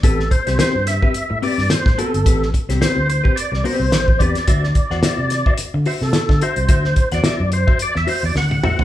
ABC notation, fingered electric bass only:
X:1
M:4/4
L:1/16
Q:"Swing 16ths" 1/4=108
K:Ador
V:1 name="Fingered electric bass" clef=bass
A,,,2 z C,, z G,,2 z2 A,, z G,, z A,, z G,,, | A,,,2 z C,, z D,,2 z2 C,, z C,, A,,,2 E,, z | D,,2 z E,, z C,2 z2 D, z C, z D, z C,, | D,,2 z E,, z F,,2 z2 E,, z E,, D,,2 A,, z |]